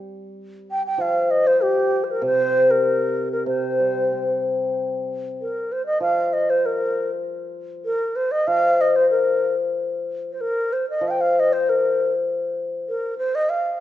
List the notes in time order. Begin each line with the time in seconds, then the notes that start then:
Already playing: G3
0.71 G5
0.86 G5
0.98 F3 F5
1.31 D#5
1.47 C5
1.63 G4
2.04 C5
2.11 A#4
2.22 C3
2.26 C5
2.71 A#4
3.32 A#4
3.46 C3 C5
3.80 G3
4.13 C4
5.41 A#4
5.72 C5
5.86 D#5
6.00 F3 F5
6.33 D#5
6.50 C5
6.66 A#4
7.85 A#4
8.16 C5
8.31 D#5
8.47 F3 F5
8.81 D#5
8.96 C5
9.10 A#4
10.32 C5
10.41 A#4
10.73 C5
10.90 D#5
11.01 F3
11.07 F5 G5
11.21 F5
11.40 D#5
11.53 C5
11.69 A#4
12.89 A#4
13.18 C5
13.35 D#5
13.49 F5